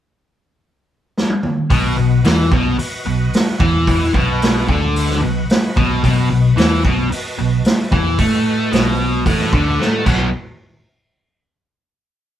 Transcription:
1.18 snare
1.30 high tom
1.43 mid tom
1.70 B1 B2 F#4 B4 D#5 F#5, kick, open hi-hat
1.97 B1 B2
2.25 E2 E3, snare, open hi-hat
2.52 B1 B2, kick
2.79 F#4 B4 D#5 F#5, muted overdriven electric guitar stroke, muted picked electric bass stroke, open hi-hat
3.06 B1 B2
3.33 snare, open hi-hat
3.60 E2 E3, kick
3.87 F#4 B4 D#5 F#5, kick, open hi-hat
4.14 B1 B2, kick
4.42 snare, open hi-hat
4.69 D2 D3, kick
4.96 F#4 B4 D#5 F#5, open hi-hat
5.11 snare
5.22 B1 B2
5.50 B5, snare, open hi-hat
5.76 B1 B2 D#5, kick
6.04 B1 B2 F#4 B4 D#5 F#5, kick, open hi-hat
6.30 B1 B2
6.57 E2 E3, snare, open hi-hat
6.85 B1 B2, kick
7.11 F#4 B4 D#5 A5, muted overdriven electric guitar stroke, muted picked electric bass stroke, open hi-hat
7.39 B1 B2
7.65 snare, open hi-hat
7.92 E2 E3, kick
8.18 A2 A3 F#4 B4 D#5 G#5, kick, open hi-hat
8.72 B1 B2, snare, open hi-hat
9.26 A1 A2 F#4 B4 D#5 F#5, kick, open hi-hat
9.41 snare
9.53 D2 D3, kick
9.79 A2 A3, snare
10.05 B1 B2 F#3 B3 F#4 B4 D#5 F#5, kick, crash

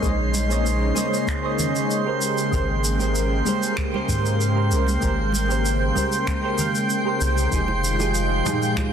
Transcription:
Already playing: C#3 G#3 C#4 D#4 C5 C6
0.01 A#1 A#3 G#4 C5 C#5 D#5, kick, shaker
0.34 high conga, shaker
0.48 A#3 G#4 C5 C#5 D#5, shaker
0.66 shaker
0.94 A#3 G#4 C5 C#5 D#5, high conga, shaker
1.14 shaker
1.28 finger snap, kick, shaker
1.42 A#3 G#4 C5 C#5 D#5
1.59 low conga, shaker
1.76 shaker
1.91 shaker
2.05 G#3 G4 A#4 C5
2.22 A#3 G5, shaker
2.38 shaker
2.51 G#1 G#3 G4 A#4 C5, kick, shaker
2.84 shaker
2.98 G#3 G4 A#4 C5, shaker
3.15 shaker
3.45 G#3 G4 A#4 C5, high conga, shaker
3.63 shaker
3.77 finger snap, kick, shaker
3.92 G#3 G4 A#4 C5, high conga
4.08 G#2, kick, low conga, shaker
4.26 shaker
4.41 shaker
4.54 G#3 G4 A#4 C5
4.72 C2, shaker
4.87 high conga, shaker
5.00 G#1 G#3 G4 A#4 C5, kick, shaker
5.32 high conga, shaker
5.48 G#3 G4 A#4 C5, shaker
5.66 shaker
5.94 G#3 G4 A#4 C5, kick, high conga, shaker
6.12 shaker
6.27 finger snap, kick, shaker
6.41 G#3 G4 A#4 C5
6.57 G#3 G4 A#4 F5, low conga, shaker
6.75 shaker
6.90 shaker
7.04 G#3 G4 A#4
7.08 C5
7.21 C2, shaker
7.38 shaker
7.51 F1 D#3 F3 G#3 D#4 F4 G4 G#4, kick, shaker
7.68 high bongo
7.84 shaker
7.98 F3 D#4 G4 G#4, high bongo, shaker
8.15 shaker
8.44 F3 D#4 G4 G#4, mid tom, high bongo, high conga, shaker
8.62 shaker
8.77 finger snap, kick, high bongo, shaker

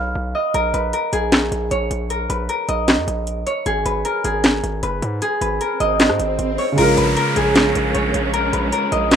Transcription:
Already playing: B1 B4 C#5 D#5 F5
0.15 B1
0.35 D#5
0.54 A#1 A#4, closed hi-hat
0.74 A#1 B4, closed hi-hat
0.93 A#4, closed hi-hat
1.13 A#1 G#4, closed hi-hat
1.32 snare, clap, closed hi-hat
1.52 A#1, closed hi-hat
1.71 A#1 C#5, closed hi-hat
1.91 A#1, closed hi-hat
2.10 A#4, closed hi-hat
2.30 A#1 B4, closed hi-hat
2.49 A#4, closed hi-hat
2.69 A#1 D#5, closed hi-hat
2.88 snare, clap, closed hi-hat
2.98 F2
3.08 A#1, closed hi-hat
3.27 closed hi-hat
3.46 C#5, closed hi-hat
3.66 G#1 G#4, closed hi-hat
3.85 G#1 B4, closed hi-hat
4.05 A#4, closed hi-hat
4.24 G#1 G#4, closed hi-hat
4.44 snare, clap, closed hi-hat
4.63 G#1, closed hi-hat
4.83 F#1 B4, closed hi-hat
5.02 G#2, closed hi-hat
5.22 G#4, closed hi-hat, swell
5.41 G#1 B4, closed hi-hat
5.61 A#4, closed hi-hat
5.80 G#1 D#5, closed hi-hat
6.00 snare, clap, closed hi-hat
6.09 G#2, cross-stick
6.19 G#1, closed hi-hat
6.39 G#1, closed hi-hat
6.58 C#5, open hi-hat
6.72 C#3 G#3
6.78 A#1 G#3 A#3 C#4 F4 A#4, closed hi-hat, crash, downlifter
6.82 A#4
6.97 A#1 B4, closed hi-hat
7.17 A#4, closed hi-hat
7.36 A#1 G#4, closed hi-hat
7.55 snare, clap, closed hi-hat
7.75 A#1, closed hi-hat
7.95 A#1 C#5, closed hi-hat
8.14 A#1, closed hi-hat
8.33 A#4, closed hi-hat
8.53 A#1 B4, closed hi-hat
8.72 A#4, closed hi-hat
8.92 A#1 D#5, closed hi-hat
9.11 snare, clap, closed hi-hat

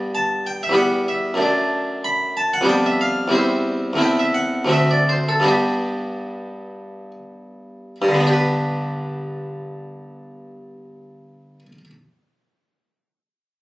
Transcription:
Already playing: G2 G3 B3 G4
0.15 A5
0.47 G5
0.63 E5
0.69 E2 G3 B3
0.74 G4 F#5
1.08 E5
1.34 F#2 A3 D4
1.42 D5
2.05 B5
2.37 A5
2.54 F#5
2.61 F2 G3 B3
2.66 D4 G5
2.86 E5
3.01 F5
3.28 E2 G3 C4
3.32 E4 C5
3.93 E2 A3 C4
3.98 E4 G5
4.19 E5
4.34 F#5
4.65 D2 A3 C4
4.69 F#4 E5
4.91 D5
5.09 C5
5.29 A4
5.40 G2 G3 B3
5.44 D4 G4
8.02 G2
8.08 D3
8.14 B3
8.20 D4
8.27 G4
8.33 B4

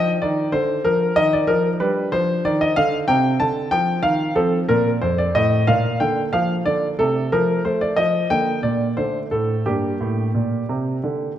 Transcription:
Already playing: F3 D4
0.22 D#3 D5
0.52 D3 C5
0.85 F3 A#4
1.16 D#3 D#5
1.33 D5
1.47 F3 A#4
1.80 G3 D4 B4
2.12 F3 C5
2.45 D#3 D5
2.61 D#5
2.76 D3 F5
3.08 C3 C4 G5
3.40 D3 A5
3.71 F3 G5
4.03 D#3 F5
4.35 F3 C4 A4
4.69 A#2 A#4
5.02 F2 C5
5.18 D5
5.35 A2 D#5
5.67 A#2 A#3 F5
6.00 D3 G5
6.33 F3 F5
6.66 D3 D5
6.99 C3 A3 A4
7.32 F3 A#4
7.65 A3 C5
7.81 D5
7.96 F3 D#5
8.30 D3 A#3 G5
8.63 A#2 D5
8.97 D3 A3 C5
9.31 A2 A4
9.66 G2 A#3 G4
10.01 A2
10.35 A#2
10.69 C3
11.04 D3

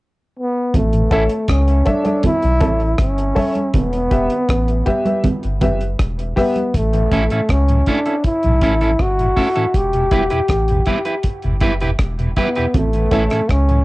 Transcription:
0.39 B3
0.74 A1 A3, kick, closed hi-hat, low conga
0.93 A2 E3, closed hi-hat
1.11 A1 C#4 E4 A4 C#5 E5, kick, closed hi-hat
1.30 closed hi-hat
1.48 C#2 C#4, kick, cross-stick, closed hi-hat
1.68 closed hi-hat
1.85 D4 A4 C#5 E5, kick, closed hi-hat, high conga
2.04 A4 C#5 E5, closed hi-hat, high conga
2.23 E4, kick, closed hi-hat, high conga, low conga
2.42 B1, closed hi-hat
2.60 A1 A4 C#5 E5, kick, closed hi-hat, high conga, low conga
2.80 closed hi-hat
2.98 G1 C#4, kick, cross-stick, closed hi-hat
3.18 closed hi-hat
3.35 A4 C#5 E5, kick, open hi-hat, high conga
3.55 closed hi-hat, high conga
3.74 E1 B3, kick, closed hi-hat, low conga
3.93 closed hi-hat
4.11 E1 G4 B4 E5, kick, closed hi-hat
4.30 closed hi-hat
4.49 A1, kick, cross-stick, closed hi-hat
4.68 closed hi-hat
4.86 G4 B4 E5, kick, closed hi-hat, high conga
5.05 G4 B4 E5, closed hi-hat, high conga
5.24 kick, closed hi-hat, high conga, low conga
5.43 G1, closed hi-hat
5.61 F#1 G4 B4 E5, kick, closed hi-hat, high conga, low conga
5.81 closed hi-hat
5.99 E1, kick, cross-stick, closed hi-hat
6.19 closed hi-hat
6.36 B3 G4 B4 E5, kick, cross-stick, open hi-hat, high conga
6.56 closed hi-hat, high conga
6.74 A1 A3, kick, closed hi-hat
6.93 A2 E3, closed hi-hat
7.12 A1 A3 C#4 E4 A4, kick, closed hi-hat
7.30 A2 E3 C#4 E4 A4, closed hi-hat
7.49 C#2 C#4, kick, cross-stick, closed hi-hat
7.69 A2 E3, closed hi-hat
7.86 A3 C#4 D4 E4 A4, kick, closed hi-hat
8.06 C#4 E4 A4, closed hi-hat
8.24 E4, kick, closed hi-hat
8.43 B1 A2 E3, closed hi-hat
8.61 A1 A3 C#4 E4 A4, kick, closed hi-hat
8.81 A2 E3 C#4 E4 A4, closed hi-hat
8.99 G1 F#4, kick, cross-stick, closed hi-hat
9.19 A2 E3, closed hi-hat
9.36 A3 C#4 E4 A4, kick, open hi-hat
9.56 A2 E3 C#4 E4 A4, closed hi-hat
9.74 E1 G4, kick, closed hi-hat
9.93 E2 B2, closed hi-hat
10.11 E1 G3 B3 E4 G4 B4, kick, closed hi-hat
10.30 E2 B2 E4 G4 B4, closed hi-hat
10.48 A1, kick, cross-stick, closed hi-hat
10.68 E2 B2, closed hi-hat
10.86 G3 B3 E4 G4 B4, kick, closed hi-hat
11.05 E4 G4 B4, closed hi-hat
11.23 kick, closed hi-hat
11.43 G1 E2 B2, closed hi-hat
11.61 F#1 G3 B3 E4 G4 B4, kick, closed hi-hat
11.81 E2 B2 E4 G4 B4, closed hi-hat
11.99 E1, kick, cross-stick, closed hi-hat
12.19 E2 B2, closed hi-hat
12.36 G3 B3 E4 G4 B4, kick, closed hi-hat
12.55 E2 B2 E4 G4 B4, closed hi-hat
12.74 A1 A3, kick, closed hi-hat, low conga
12.93 A2 E3, closed hi-hat
13.11 A1 A3 C#4 E4 A4 C#5 E5, kick, closed hi-hat
13.30 A2 E3 C#4 E4 A4, cross-stick, closed hi-hat
13.49 C#2 C#4, kick, cross-stick, closed hi-hat
13.69 A2 E3, closed hi-hat

